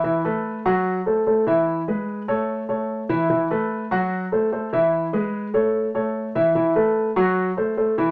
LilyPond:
\new Staff \with { instrumentName = "Grand piano" } { \time 4/4 \key a \lydian \tempo 4 = 148 <e e' e''>8 <a a' b'>4 <fis fis' fis''>4 <a a' c''>8 <a a' c''>8 <e e' e''>8~ | <e e' e''>8 <gis gis' b'>4 <a a' cis''>4 <a a' cis''>4 <e e' e''>8 | <e e' e''>8 <a a' b'>4 <fis fis' fis''>4 <a a' c''>8 <a a' c''>8 <e e' e''>8~ | <e e' e''>8 <gis gis' b'>4 <a a' cis''>4 <a a' cis''>4 <e e' e''>8 |
<e e' e''>8 <a a' b'>4 <fis fis' fis''>4 <a a' c''>8 <a a' c''>8 <e e' e''>8 | }